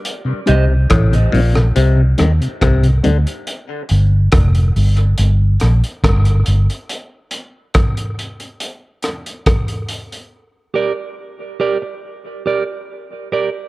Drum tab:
HH |x-x-xxoxx-xxxxxx|x-x-xxoxx-xxxxxx|x-x-xxxxx-xxxxxx|----------------|
SD |----r--r--r-r---|----r-----r-r---|----r-----r-r---|----------------|
BD |----o-------o---|----o-------o---|----o-------o---|----------------|